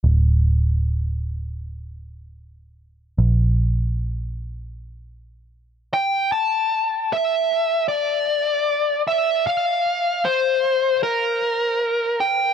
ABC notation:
X:1
M:4/4
L:1/8
Q:1/4=76
K:Dm
V:1 name="Lead electric guitar"
z8 | z6 z g | a2 e2 d3 e | f2 c2 B3 g |]
V:2 name="Picked electric bass" clef=bass
D,,,8 | B,,,8 | z8 | z8 |]